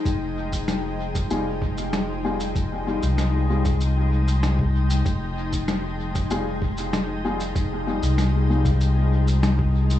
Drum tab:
SH |x--xx--xx--xx--x|x--xx--xx--xx--x|x--xx--xx--xx--x|x--xx--xx--xx--x|
SD |----o-------o---|----o-------o---|----o-------o---|----o-------o---|
BD |o--o---o--o-----|o------o-----o--|o--o---o--o-----|o------o-----o--|